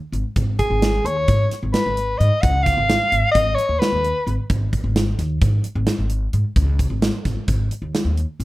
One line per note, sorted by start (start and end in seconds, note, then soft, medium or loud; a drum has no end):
0.12 0.22 G#1 medium
0.12 closed hi-hat medium
0.36 0.54 G#1 medium
0.36 kick loud
0.36 closed hi-hat medium
0.59 1.08 G#4 medium
0.59 kick medium
0.59 closed hi-hat medium
0.70 0.98 G#1 medium
0.82 snare loud
0.82 closed hi-hat medium
1.04 1.23 D#2 medium
1.04 1.52 C#5 loud
1.04 closed hi-hat medium
1.28 1.47 G#2 medium
1.28 kick loud
1.28 closed hi-hat medium
1.51 snare soft
1.51 closed hi-hat medium
1.63 1.72 G#1 medium
1.73 2.20 B4 medium
1.73 snare loud
1.73 closed hi-hat medium
1.86 2.14 G#1 medium
1.97 closed hi-hat medium
2.18 2.29 G#2 medium
2.18 2.43 D#5 medium
2.18 closed hi-hat medium
2.42 2.71 C#2 medium
2.42 2.64 F#5 medium
2.42 kick loud
2.42 closed hi-hat medium
2.63 3.31 F5 loud
2.63 kick medium
2.63 snare soft
2.63 closed hi-hat medium
2.77 2.96 G#1 medium
2.90 snare loud
2.90 closed hi-hat medium
3.12 3.21 G#1 medium
3.12 closed hi-hat medium
3.31 3.53 G#1 medium
3.31 3.56 D#5 medium
3.31 kick medium
3.31 closed hi-hat medium
3.55 3.81 C#5 medium
3.55 closed hi-hat medium
3.69 3.78 D#2 medium
3.79 4.32 B4 medium
3.79 snare loud
3.79 closed hi-hat medium
3.92 4.11 D#2 medium
4.04 closed hi-hat medium
4.27 4.36 G#1 medium
4.27 closed hi-hat medium
4.50 4.68 G#1 medium
4.50 kick loud
4.50 closed hi-hat medium
4.73 kick medium
4.73 closed hi-hat medium
4.84 5.12 G#1 medium
4.96 snare loud
4.96 closed hi-hat medium
5.19 5.37 D#2 medium
5.19 snare soft
5.19 closed hi-hat medium
5.41 5.60 G#2 medium
5.41 kick loud
5.41 closed hi-hat medium
5.64 closed hi-hat medium
5.75 5.85 G#1 loud
5.87 snare loud
5.87 closed hi-hat medium
5.98 6.26 G#1 medium
6.10 closed hi-hat medium
6.33 6.43 G#2 medium
6.33 closed hi-hat medium
6.56 6.84 C#2 medium
6.56 kick loud
6.56 closed hi-hat medium
6.79 kick medium
6.79 closed hi-hat medium
6.90 7.09 G#1 medium
7.02 snare loud
7.02 closed hi-hat medium
7.25 7.35 G#1 medium
7.25 kick medium
7.25 snare soft
7.25 closed hi-hat medium
7.48 7.67 G#1 medium
7.48 kick medium
7.48 closed hi-hat medium
7.71 closed hi-hat medium
7.82 7.92 D#2 medium
7.95 snare medium
7.95 closed hi-hat medium
8.05 8.24 D#2 medium
8.17 closed hi-hat medium
8.40 8.44 G#1 medium
8.40 closed hi-hat medium